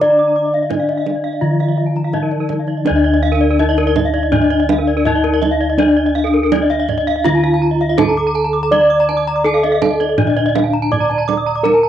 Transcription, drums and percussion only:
0.01 kendang low soft
0.18 kendang slap soft
0.54 kendang slap soft
0.71 kendang high soft
0.71 kendang low soft
0.89 kendang slap soft
1.06 kendang high soft
1.24 kendang slap soft
1.60 kendang slap soft
1.96 kendang slap soft
2.13 kendang high soft
2.13 kendang low soft
2.31 kendang slap soft
2.49 kendang high soft
2.49 kendang low soft
2.67 kendang slap soft
2.86 kendang high soft
3.22 kendang slap soft
3.60 kendang slap soft
3.78 kendang slap soft
3.96 kendang slap soft
3.96 kendang high medium
3.96 kendang low medium
4.14 kendang slap soft
4.33 kendang slap soft
4.33 kendang low medium
4.51 kendang slap soft
4.69 kendang high medium
5.05 kendang low medium
5.24 kendang slap soft
5.42 kendang high soft
5.79 kendang high soft
6.16 kendang slap soft
6.52 kendang slap soft
6.52 kendang high medium
6.71 kendang slap soft
6.89 kendang slap soft
6.89 kendang low medium
7.08 kendang slap soft
7.25 kendang slap soft
7.25 kendang low medium
7.44 kendang slap soft
7.98 kendang high medium
7.98 kendang low medium
8.72 kendang high medium
9.09 kendang slap soft
9.46 kendang slap soft
9.64 kendang slap soft
9.82 kendang slap soft
9.82 kendang high medium
9.82 kendang low medium
10.01 kendang slap soft
10.18 kendang slap soft
10.18 kendang low medium
10.37 kendang slap soft
10.56 kendang high medium
10.93 kendang low medium
11.11 kendang slap soft
11.29 kendang high soft
11.65 kendang high soft

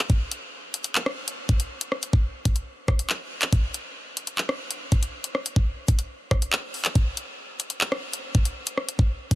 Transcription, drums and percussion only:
0.10 kick loud
0.10 closed hi-hat soft
0.31 closed hi-hat medium
0.74 closed hi-hat medium
0.84 closed hi-hat medium
0.95 clap loud
1.06 cross-stick loud
1.28 closed hi-hat medium
1.49 kick loud
1.49 closed hi-hat soft
1.60 closed hi-hat medium
1.81 closed hi-hat medium
1.92 cross-stick medium
2.03 closed hi-hat medium
2.13 kick loud
2.45 kick loud
2.45 closed hi-hat medium
2.56 closed hi-hat medium
2.88 kick loud
2.88 cross-stick medium
2.99 closed hi-hat medium
3.10 clap loud
3.42 clap medium
3.42 closed hi-hat medium
3.53 kick loud
3.53 closed hi-hat medium
3.74 closed hi-hat medium
4.17 closed hi-hat medium
4.27 closed hi-hat medium
4.38 clap loud
4.49 cross-stick loud
4.71 closed hi-hat medium
4.92 kick loud
4.92 closed hi-hat soft
5.03 closed hi-hat medium
5.24 closed hi-hat medium
5.35 cross-stick medium
5.46 closed hi-hat medium
5.56 kick loud
5.88 kick loud
5.88 closed hi-hat medium
5.99 closed hi-hat medium
6.31 kick loud
6.31 cross-stick medium
6.42 closed hi-hat medium
6.53 clap loud
6.74 open hi-hat soft
6.85 clap medium
6.85 closed hi-hat medium
6.95 kick loud
6.95 closed hi-hat soft
7.17 closed hi-hat medium
7.60 closed hi-hat medium
7.70 closed hi-hat medium
7.81 clap loud
7.92 cross-stick loud
8.13 closed hi-hat medium
8.35 kick loud
8.35 closed hi-hat soft
8.45 closed hi-hat medium
8.67 closed hi-hat medium
8.78 cross-stick medium
8.89 closed hi-hat medium
8.99 kick loud
9.31 kick loud
9.31 closed hi-hat medium

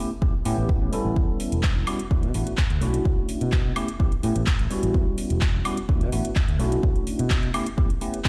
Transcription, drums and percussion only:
0.22 kick loud
0.45 open hi-hat loud
0.69 kick loud
0.93 open hi-hat medium
1.16 kick loud
1.40 open hi-hat loud
1.52 closed hi-hat medium
1.63 kick loud
1.63 clap loud
1.87 open hi-hat medium
1.87 high woodblock medium
1.99 closed hi-hat medium
2.11 kick loud
2.23 closed hi-hat soft
2.34 open hi-hat medium
2.47 closed hi-hat medium
2.57 kick loud
2.57 clap loud
2.70 closed hi-hat soft
2.82 open hi-hat medium
2.94 closed hi-hat medium
3.05 kick loud
3.29 open hi-hat loud
3.41 closed hi-hat medium
3.52 kick loud
3.52 clap loud
3.76 open hi-hat medium
3.76 high woodblock medium
3.88 closed hi-hat medium
4.00 kick loud
4.12 closed hi-hat medium
4.23 open hi-hat loud
4.36 closed hi-hat medium
4.46 kick loud
4.46 clap loud
4.59 closed hi-hat soft
4.71 open hi-hat medium
4.83 closed hi-hat medium
4.94 kick loud
5.18 open hi-hat loud
5.30 closed hi-hat medium
5.41 kick loud
5.41 clap loud
5.65 open hi-hat medium
5.65 high woodblock medium
5.77 closed hi-hat medium
5.89 kick loud
6.01 closed hi-hat medium
6.12 open hi-hat medium
6.25 closed hi-hat medium
6.36 kick loud
6.36 clap loud
6.48 closed hi-hat medium
6.60 open hi-hat medium
6.72 closed hi-hat medium
6.83 kick loud
6.96 closed hi-hat soft
7.07 open hi-hat loud
7.19 closed hi-hat medium
7.30 kick loud
7.30 clap loud
7.43 closed hi-hat soft
7.54 open hi-hat medium
7.54 high woodblock medium
7.66 closed hi-hat medium
7.78 kick loud
7.90 closed hi-hat medium
8.01 open hi-hat loud
8.14 closed hi-hat medium
8.24 kick loud
8.24 snare medium
8.24 clap loud

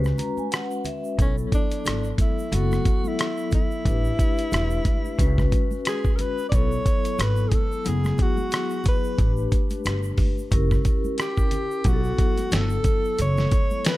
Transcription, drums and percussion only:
0.04 cross-stick soft
0.04 high conga medium
0.04 shaker soft
0.18 closed hi-hat medium
0.18 low conga medium
0.18 shaker soft
0.37 high conga medium
0.37 shaker soft
0.52 cross-stick loud
0.52 closed hi-hat medium
0.52 shaker medium
0.71 shaker soft
0.85 closed hi-hat medium
0.85 low conga medium
0.85 shaker soft
1.04 shaker soft
1.19 kick loud
1.19 closed hi-hat medium
1.19 shaker soft
1.38 shaker soft
1.52 kick medium
1.52 closed hi-hat medium
1.52 shaker soft
1.71 closed hi-hat soft
1.71 shaker soft
1.85 cross-stick loud
1.85 closed hi-hat loud
1.85 shaker medium
2.04 shaker soft
2.18 kick medium
2.18 closed hi-hat medium
2.18 high conga medium
2.18 low conga medium
2.18 shaker soft
2.39 shaker soft
2.53 closed hi-hat medium
2.53 high conga soft
2.53 shaker medium
2.72 cross-stick soft
2.72 high conga medium
2.72 shaker soft
2.85 kick medium
2.85 closed hi-hat medium
2.85 low conga medium
2.85 shaker soft
3.04 high conga medium
3.04 shaker soft
3.19 cross-stick loud
3.19 closed hi-hat medium
3.19 shaker medium
3.38 shaker soft
3.51 kick medium
3.51 closed hi-hat medium
3.51 low conga medium
3.51 shaker soft
3.71 shaker soft
3.85 kick loud
3.85 closed hi-hat medium
3.85 shaker medium
4.05 shaker soft
4.19 kick medium
4.19 closed hi-hat medium
4.19 shaker soft
4.38 closed hi-hat soft
4.38 shaker soft
4.52 cross-stick medium
4.52 closed hi-hat loud
4.52 shaker medium
4.70 shaker soft
4.85 kick medium
4.85 closed hi-hat medium
4.85 high conga medium
4.85 low conga medium
4.85 shaker soft
5.05 shaker soft
5.19 kick medium
5.19 closed hi-hat loud
5.19 high conga soft
5.19 shaker medium
5.38 kick medium
5.38 cross-stick soft
5.38 high conga medium
5.38 shaker soft
5.52 kick medium
5.52 closed hi-hat medium
5.52 low conga medium
5.52 shaker soft
5.71 high conga medium
5.71 shaker soft
5.85 cross-stick loud
5.85 closed hi-hat medium
5.85 shaker medium
6.04 kick medium
6.04 shaker soft
6.19 closed hi-hat medium
6.19 low conga medium
6.19 shaker soft
6.38 shaker soft
6.52 kick loud
6.52 closed hi-hat medium
6.52 shaker medium
6.72 shaker soft
6.86 kick medium
6.86 closed hi-hat medium
6.86 shaker soft
7.05 closed hi-hat soft
7.05 shaker soft
7.19 cross-stick loud
7.19 closed hi-hat loud
7.19 shaker medium
7.36 shaker soft
7.52 kick medium
7.52 closed hi-hat medium
7.52 high conga medium
7.52 low conga medium
7.52 shaker soft
7.72 shaker soft
7.85 closed hi-hat loud
7.85 high conga soft
7.85 shaker medium
8.04 cross-stick soft
8.04 high conga medium
8.04 shaker soft
8.18 kick medium
8.18 closed hi-hat medium
8.18 low conga medium
8.18 shaker soft
8.37 high conga medium
8.37 shaker soft
8.51 cross-stick loud
8.51 closed hi-hat medium
8.51 shaker medium
8.70 shaker soft
8.84 kick medium
8.84 closed hi-hat medium
8.84 low conga medium
8.84 shaker soft
9.04 shaker soft
9.18 kick loud
9.18 closed hi-hat medium
9.18 shaker medium
9.37 shaker soft
9.52 kick medium
9.52 closed hi-hat medium
9.52 shaker soft
9.70 closed hi-hat soft
9.70 high conga soft
9.70 shaker soft
9.84 cross-stick medium
9.84 closed hi-hat loud
9.84 shaker medium
10.03 shaker soft
10.18 kick medium
10.18 open hi-hat medium
10.18 high conga medium
10.18 low conga medium
10.18 shaker soft
10.38 shaker soft
10.51 kick medium
10.51 closed hi-hat medium
10.51 high conga soft
10.51 shaker medium
10.71 kick medium
10.71 cross-stick soft
10.71 high conga medium
10.71 shaker soft
10.85 kick medium
10.85 closed hi-hat medium
10.85 low conga medium
10.85 shaker soft
11.04 high conga medium
11.04 shaker soft
11.18 cross-stick loud
11.18 closed hi-hat medium
11.18 shaker medium
11.37 kick medium
11.37 shaker soft
11.51 closed hi-hat medium
11.51 low conga medium
11.51 shaker soft
11.71 shaker soft
11.84 kick loud
11.84 closed hi-hat medium
11.84 shaker medium
12.04 shaker soft
12.18 kick medium
12.18 closed hi-hat medium
12.18 shaker soft
12.38 closed hi-hat soft
12.38 high conga soft
12.38 shaker soft
12.52 snare loud
12.52 closed hi-hat loud
12.52 shaker medium
12.70 shaker soft
12.84 kick medium
12.84 closed hi-hat medium
12.84 low conga medium
12.84 shaker soft
13.05 shaker soft
13.18 closed hi-hat loud
13.18 shaker medium
13.37 snare soft
13.37 high conga medium
13.37 shaker soft
13.51 kick medium
13.51 closed hi-hat medium
13.51 low conga medium
13.51 shaker soft
13.71 high conga medium
13.71 shaker soft
13.85 snare loud
13.85 closed hi-hat medium
13.85 shaker medium

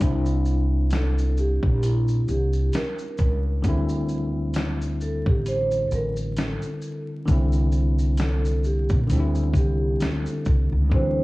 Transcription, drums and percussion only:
0.01 kick loud
0.01 closed hi-hat medium
0.01 shaker medium
0.26 shaker soft
0.45 shaker soft
0.91 snare loud
0.91 closed hi-hat medium
0.91 shaker medium
1.18 shaker medium
1.37 shaker soft
1.63 kick medium
1.83 closed hi-hat medium
1.83 shaker medium
2.08 shaker soft
2.28 shaker soft
2.53 shaker soft
2.73 snare loud
2.73 closed hi-hat medium
2.73 shaker medium
2.99 shaker soft
3.18 kick medium
3.18 shaker soft
3.64 kick loud
3.64 closed hi-hat medium
3.64 shaker medium
3.89 shaker soft
4.09 shaker soft
4.54 snare loud
4.54 closed hi-hat medium
4.54 shaker medium
4.82 shaker soft
5.01 shaker soft
5.26 kick medium
5.46 closed hi-hat medium
5.46 shaker medium
5.71 shaker soft
5.91 shaker soft
6.17 shaker soft
6.37 snare loud
6.37 closed hi-hat medium
6.37 shaker medium
6.62 shaker soft
6.82 shaker soft
7.28 kick loud
7.28 closed hi-hat medium
7.28 shaker medium
7.52 shaker soft
7.72 shaker soft
7.99 shaker soft
8.17 snare loud
8.17 closed hi-hat medium
8.17 shaker medium
8.45 shaker soft
8.64 shaker soft
8.89 kick medium
8.89 shaker soft
9.10 closed hi-hat medium
9.10 shaker medium
9.35 shaker soft
9.54 kick medium
9.54 shaker soft
10.00 snare loud
10.00 closed hi-hat medium
10.00 shaker medium
10.26 shaker soft
10.45 kick medium
10.45 shaker soft
10.91 kick loud

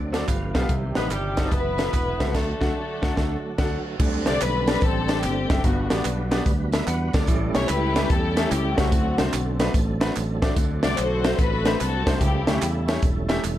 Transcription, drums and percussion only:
0.14 snare medium
0.14 closed hi-hat medium
0.14 tambourine medium
0.28 kick medium
0.28 clap medium
0.28 closed hi-hat medium
0.28 tambourine medium
0.55 kick medium
0.55 snare loud
0.55 closed hi-hat medium
0.55 tambourine medium
0.69 kick loud
0.69 closed hi-hat medium
0.69 tambourine medium
0.95 snare medium
0.95 closed hi-hat medium
0.95 tambourine soft
1.10 clap medium
1.10 closed hi-hat medium
1.10 tambourine loud
1.37 kick medium
1.37 snare loud
1.37 clap medium
1.37 closed hi-hat medium
1.37 tambourine medium
1.51 kick loud
1.51 closed hi-hat medium
1.51 tambourine medium
1.78 snare loud
1.78 closed hi-hat medium
1.78 tambourine medium
1.94 kick medium
1.94 clap medium
1.94 closed hi-hat medium
1.94 tambourine medium
2.20 kick medium
2.20 snare loud
2.20 closed hi-hat medium
2.20 tambourine soft
2.35 kick medium
2.35 snare loud
2.35 crash medium
2.61 kick loud
2.61 snare medium
3.03 kick loud
3.03 snare loud
3.17 kick medium
3.17 snare medium
3.58 kick loud
3.58 snare loud
3.58 crash medium
4.00 kick loud
4.00 crash loud
4.00 tambourine medium
4.26 snare medium
4.26 closed hi-hat medium
4.26 tambourine soft
4.41 clap loud
4.41 closed hi-hat medium
4.41 tambourine loud
4.67 snare loud
4.67 closed hi-hat medium
4.67 tambourine medium
4.81 kick loud
4.81 closed hi-hat medium
4.81 tambourine medium
5.08 snare loud
5.08 closed hi-hat medium
5.08 tambourine medium
5.23 clap medium
5.23 closed hi-hat loud
5.23 tambourine medium
5.50 kick loud
5.50 snare loud
5.50 closed hi-hat medium
5.50 tambourine medium
5.64 kick loud
5.64 closed hi-hat medium
5.64 tambourine medium
5.90 snare loud
5.90 closed hi-hat medium
5.90 tambourine medium
6.05 clap loud
6.05 closed hi-hat medium
6.05 tambourine loud
6.31 snare loud
6.31 closed hi-hat medium
6.31 tambourine medium
6.46 kick loud
6.46 closed hi-hat medium
6.46 tambourine medium
6.72 snare loud
6.72 closed hi-hat medium
6.72 tambourine medium
6.87 clap medium
6.87 closed hi-hat loud
6.87 tambourine medium
7.13 kick loud
7.13 snare loud
7.13 closed hi-hat medium
7.13 tambourine medium
7.27 kick loud
7.27 closed hi-hat loud
7.27 tambourine medium
7.54 snare loud
7.54 closed hi-hat medium
7.54 tambourine medium
7.69 clap loud
7.69 closed hi-hat medium
7.69 tambourine loud
7.96 snare loud
7.96 closed hi-hat medium
7.96 tambourine medium
8.10 kick loud
8.10 closed hi-hat medium
8.10 tambourine medium
8.37 snare loud
8.37 closed hi-hat medium
8.37 tambourine medium
8.52 clap medium
8.52 closed hi-hat loud
8.52 tambourine medium
8.78 kick loud
8.78 snare loud
8.78 closed hi-hat medium
8.78 tambourine medium
8.92 kick loud
8.92 closed hi-hat medium
8.92 tambourine medium
9.18 snare loud
9.18 closed hi-hat medium
9.18 tambourine medium
9.33 clap loud
9.33 closed hi-hat medium
9.33 tambourine loud
9.60 snare loud
9.60 closed hi-hat medium
9.60 tambourine medium
9.74 kick loud
9.74 closed hi-hat medium
9.74 tambourine medium
10.01 snare loud
10.01 closed hi-hat medium
10.01 tambourine medium
10.15 clap medium
10.15 closed hi-hat medium
10.15 tambourine medium
10.42 kick loud
10.42 snare loud
10.42 closed hi-hat medium
10.42 tambourine medium
10.56 kick loud
10.56 closed hi-hat loud
10.56 tambourine medium
10.83 snare loud
10.83 closed hi-hat medium
10.83 tambourine medium
10.97 clap loud
10.97 closed hi-hat medium
10.97 tambourine loud
11.24 snare loud
11.24 closed hi-hat medium
11.24 tambourine medium
11.39 kick loud
11.39 closed hi-hat medium
11.39 tambourine medium
11.65 snare loud
11.65 closed hi-hat medium
11.65 tambourine medium
11.80 clap medium
11.80 closed hi-hat loud
11.80 tambourine medium
12.07 kick loud
12.07 snare loud
12.07 closed hi-hat medium
12.07 tambourine medium
12.21 kick loud
12.21 closed hi-hat medium
12.21 tambourine medium
12.47 snare loud
12.47 closed hi-hat medium
12.47 tambourine medium
12.62 clap loud
12.62 closed hi-hat medium
12.62 tambourine loud
12.88 snare loud
12.88 closed hi-hat medium
12.88 tambourine medium
13.02 kick loud
13.02 closed hi-hat medium
13.02 tambourine medium
13.29 snare loud
13.29 closed hi-hat medium
13.29 tambourine medium
13.44 clap medium
13.44 closed hi-hat loud
13.44 tambourine medium

